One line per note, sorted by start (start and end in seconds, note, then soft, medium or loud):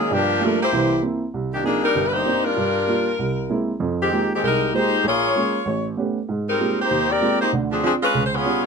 0.00 0.11 D#3 medium
0.00 0.11 A#3 medium
0.00 0.11 C#4 medium
0.00 0.11 G#4 medium
0.11 0.37 G2 medium
0.11 0.41 F3 medium
0.11 0.37 G3 medium
0.11 0.42 A#3 medium
0.11 0.42 D4 medium
0.11 0.42 G4 medium
0.40 0.60 F3 medium
0.40 0.60 G3 soft
0.40 0.61 A3 soft
0.40 0.60 A3 medium
0.40 0.60 A#3 soft
0.40 0.60 D4 medium
0.40 0.61 F4 medium
0.40 0.60 A#4 medium
0.62 1.01 A#3 medium
0.62 1.01 E4 medium
0.62 1.01 G4 medium
0.62 1.01 C5 medium
0.73 0.98 C2 medium
0.73 0.99 E3 medium
1.02 1.22 A#3 soft
1.02 1.22 C4 soft
1.02 1.23 E4 medium
1.34 1.60 C2 medium
1.54 1.64 D#3 medium
1.54 1.64 A#3 medium
1.54 1.64 D4 medium
1.54 1.64 G4 medium
1.64 1.82 F3 medium
1.64 1.84 A#3 soft
1.64 1.82 A#3 medium
1.64 1.84 C4 soft
1.64 1.84 D4 soft
1.64 1.82 D4 medium
1.64 1.84 D#4 medium
1.64 1.82 G#4 medium
1.83 2.04 G3 medium
1.83 2.04 D4 medium
1.83 2.04 D#4 medium
1.83 2.04 A#4 loud
1.95 2.22 G1 medium
1.95 2.22 G2 medium
2.07 2.14 B4 medium
2.13 2.44 A#3 medium
2.13 2.44 D#4 medium
2.13 2.44 G4 medium
2.13 2.44 C5 loud
2.26 2.46 A#3 soft
2.26 2.46 C4 soft
2.26 2.46 D4 soft
2.26 2.46 D#4 soft
2.44 3.18 G3 medium
2.44 3.19 D4 medium
2.44 3.19 F4 medium
2.44 3.68 A#4 medium
2.57 2.83 G2 medium
2.87 3.07 G3 soft
2.87 3.07 A#3 soft
2.87 3.08 F4 medium
3.19 3.45 C2 medium
3.49 3.69 G#3 soft
3.49 3.69 A#3 soft
3.49 3.70 C4 soft
3.49 3.70 E4 medium
3.80 4.07 F2 medium
3.80 4.07 F3 medium
4.00 4.29 D#3 medium
4.00 4.29 G#3 medium
4.00 4.29 C4 medium
4.00 4.29 G4 medium
4.12 4.32 G#3 soft
4.12 4.32 A#3 soft
4.12 4.32 D#4 soft
4.12 4.32 F4 soft
4.12 4.32 G4 soft
4.34 4.43 D#3 medium
4.34 4.42 G#3 medium
4.34 4.43 C4 medium
4.34 4.43 G4 medium
4.43 4.69 C2 medium
4.43 4.72 G#3 medium
4.43 4.72 D#4 medium
4.43 4.72 G4 medium
4.43 4.72 A#4 medium
4.73 4.93 G#3 soft
4.73 5.05 G#3 medium
4.73 4.93 A#3 soft
4.73 4.93 D#4 soft
4.73 5.05 D#4 medium
4.73 4.93 F4 soft
4.73 4.94 G4 medium
4.73 5.05 G4 medium
4.73 5.05 C5 loud
5.04 5.30 A#1 medium
5.04 5.63 A#3 medium
5.04 5.63 F4 medium
5.04 5.63 G#4 medium
5.04 5.94 C#5 loud
5.35 5.55 G#3 soft
5.35 5.55 A#3 soft
5.35 5.55 C#4 soft
5.66 5.92 A1 medium
5.97 6.17 A3 soft
5.97 6.17 B3 soft
5.97 6.17 C#4 soft
5.97 6.17 G4 soft
6.29 6.55 G#2 medium
6.48 6.76 G3 medium
6.48 6.76 C4 medium
6.48 6.76 D#4 medium
6.48 6.76 A#4 medium
6.59 6.79 G#3 soft
6.59 6.79 A#3 soft
6.59 6.79 C4 soft
6.59 6.79 F4 soft
6.59 6.79 G4 medium
6.79 7.09 A#3 medium
6.79 7.09 D#4 medium
6.79 7.08 G4 medium
6.79 7.09 C5 loud
6.91 7.17 D#2 medium
7.10 7.40 C4 medium
7.10 7.39 G4 medium
7.10 7.40 A#4 medium
7.10 7.40 D5 loud
7.20 7.40 G#3 soft
7.20 7.40 A#3 soft
7.20 7.40 C4 soft
7.20 7.41 F4 soft
7.20 7.41 G4 soft
7.40 7.51 A#3 medium
7.40 7.51 D#4 medium
7.40 7.51 G4 medium
7.40 7.51 C5 medium
7.53 7.79 D2 medium
7.53 7.79 D3 medium
7.71 7.82 F3 medium
7.71 7.82 C4 medium
7.71 7.82 D4 medium
7.71 7.82 G#4 medium
7.82 7.92 F3 medium
7.82 8.02 C4 soft
7.82 7.92 C4 medium
7.82 8.02 D4 soft
7.82 7.92 D4 medium
7.82 8.03 F4 medium
7.82 7.92 G#4 medium
8.02 8.23 G#3 medium
8.02 8.23 C#4 medium
8.02 8.23 F4 medium
8.02 8.23 B4 loud
8.14 8.40 C#2 medium
8.25 8.33 C5 medium
8.34 8.64 B3 medium
8.34 8.63 F4 medium
8.34 8.64 G#4 medium
8.34 8.64 C#5 medium
8.45 8.65 G3 soft
8.45 8.65 B3 soft
8.45 8.65 C#4 soft
8.45 8.65 F4 medium